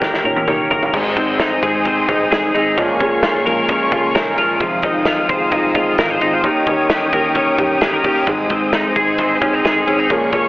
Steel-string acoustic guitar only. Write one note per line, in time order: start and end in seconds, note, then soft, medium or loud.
0.00 0.23 D#3 medium
0.00 0.24 A#3 medium
0.00 0.24 C#4 medium
0.00 0.25 G4 medium
0.24 0.46 D#3 medium
0.24 0.47 A#3 medium
0.24 0.47 C#4 medium
0.24 0.48 G4 medium
0.47 0.92 D#3 medium
0.47 0.94 A#3 medium
0.47 0.94 C#4 medium
0.47 0.94 G4 medium
0.93 1.16 G#2 medium
0.93 1.16 D#3 medium
0.93 1.15 G#3 medium
0.93 1.16 C4 medium
0.93 1.17 D#4 medium
0.93 1.17 G#4 medium
1.16 1.62 G#3 medium
1.16 1.62 C4 medium
1.16 1.63 D#4 medium
1.16 1.65 G#4 medium
1.62 2.07 G#3 medium
1.62 2.07 C4 medium
1.62 2.08 D#4 medium
1.62 2.10 G#4 medium
2.07 2.30 G#3 medium
2.07 2.31 C4 medium
2.07 2.32 D#4 medium
2.07 2.32 G#4 medium
2.31 2.53 G#3 medium
2.31 2.54 C4 medium
2.31 2.55 D#4 medium
2.31 2.55 G#4 medium
2.54 2.77 G#3 medium
2.54 2.78 C4 medium
2.54 2.78 D#4 medium
2.54 2.78 G#4 medium
2.77 3.00 A#2 medium
2.77 2.98 F3 medium
2.77 2.99 G#3 medium
2.77 3.00 C#4 loud
2.77 3.01 G#4 medium
2.99 3.45 F3 medium
2.99 3.46 G#3 medium
2.99 3.46 C#4 medium
2.99 3.47 G#4 medium
3.45 3.91 F3 medium
3.45 3.92 G#3 medium
3.45 3.92 C#4 medium
3.45 3.93 G#4 medium
3.91 4.12 F3 medium
3.91 4.13 G#3 medium
3.91 4.14 C#4 medium
3.91 4.15 G#4 medium
4.13 4.36 F3 medium
4.13 4.37 G#3 medium
4.13 4.38 C#4 medium
4.13 4.38 G#4 medium
4.37 4.60 F3 medium
4.37 4.59 G#3 medium
4.37 4.61 C#4 medium
4.37 4.61 G#4 medium
4.60 4.83 F2 medium
4.60 4.83 C3 medium
4.60 4.81 D#3 medium
4.60 4.82 G#3 medium
4.60 4.83 C4 medium
4.60 4.84 F4 medium
4.82 5.27 D#3 medium
4.82 5.27 G#3 medium
4.82 5.28 C4 medium
4.82 5.29 F4 medium
5.27 5.74 D#3 medium
5.27 5.74 G#3 medium
5.27 5.75 C4 medium
5.27 5.76 F4 medium
5.74 5.96 D#3 medium
5.74 5.97 G#3 medium
5.74 5.98 C4 medium
5.74 5.99 F4 medium
5.97 6.19 D#3 medium
5.97 6.20 G#3 medium
5.97 6.21 C4 medium
5.97 6.22 F4 medium
6.21 6.42 D#3 medium
6.21 6.44 G#3 medium
6.21 6.44 C4 medium
6.21 6.45 F4 medium
6.43 6.66 D#3 medium
6.43 6.67 A#3 medium
6.43 6.67 C#4 medium
6.43 6.67 G4 loud
6.67 7.11 D#3 medium
6.67 7.12 A#3 medium
6.67 7.13 C#4 medium
6.67 7.13 G4 medium
7.12 7.57 D#3 medium
7.12 7.57 A#3 medium
7.12 7.58 C#4 medium
7.12 7.59 G4 medium
7.57 7.79 D#3 medium
7.57 7.80 A#3 medium
7.57 7.81 C#4 medium
7.57 7.82 G4 medium
7.81 8.02 D#3 medium
7.81 8.03 A#3 medium
7.81 8.04 C#4 medium
7.81 8.05 G4 medium
8.03 8.26 D#3 medium
8.03 8.27 A#3 medium
8.03 8.27 C#4 medium
8.03 8.28 G4 medium
8.26 8.49 G#2 medium
8.26 8.50 D#3 loud
8.26 8.48 G#3 medium
8.26 8.49 C4 medium
8.26 8.50 D#4 medium
8.26 8.50 G#4 medium
8.49 8.94 G#3 medium
8.49 8.94 C4 medium
8.49 8.95 D#4 medium
8.49 8.97 G#4 medium
8.94 9.40 G#3 medium
8.94 9.41 C4 medium
8.94 9.41 D#4 medium
8.94 9.43 G#4 medium
9.41 9.62 G#3 medium
9.41 9.63 C4 medium
9.41 9.65 D#4 medium
9.41 9.65 G#4 medium
9.64 9.85 G#3 medium
9.64 9.86 C4 medium
9.64 9.87 D#4 medium
9.64 9.87 G#4 medium
9.86 10.09 G#3 medium
9.86 10.10 C4 medium
9.86 10.10 D#4 medium
9.86 10.10 G#4 medium
10.09 10.32 A#2 medium
10.09 10.30 F3 medium
10.09 10.32 G#3 medium
10.09 10.33 C#4 medium
10.09 10.33 G#4 loud
10.32 10.48 F3 medium
10.32 10.48 G#3 medium
10.32 10.48 C#4 medium
10.32 10.48 G#4 medium